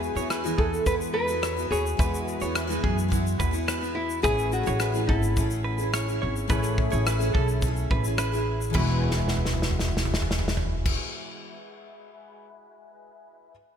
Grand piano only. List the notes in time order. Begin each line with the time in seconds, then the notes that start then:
Already playing: G#3 E4 F#4 B4
1.97 G#3 E4 F#4 B4
4.23 A3 E4 G#4
4.27 C#5
6.48 A3 E4 G#4
6.52 C#5
8.72 G#3 E4
8.77 F#4 B4